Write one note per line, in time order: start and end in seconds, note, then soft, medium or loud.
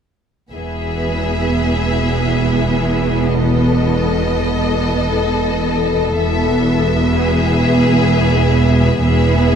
0.52 6.16 E1 soft
0.52 6.16 E2 soft
0.52 6.17 B3 soft
0.52 3.35 G#4 soft
0.52 3.36 E5 soft
3.40 7.13 A4 soft
3.40 6.20 D#5 soft
6.19 8.99 E1 soft
6.19 8.99 E2 soft
6.19 8.99 B3 soft
6.19 9.00 E5 soft
7.12 9.03 G#4 soft
9.03 9.55 E1 soft
9.03 9.55 E2 soft
9.03 9.55 B3 soft
9.03 9.55 G#4 soft
9.03 9.55 E5 soft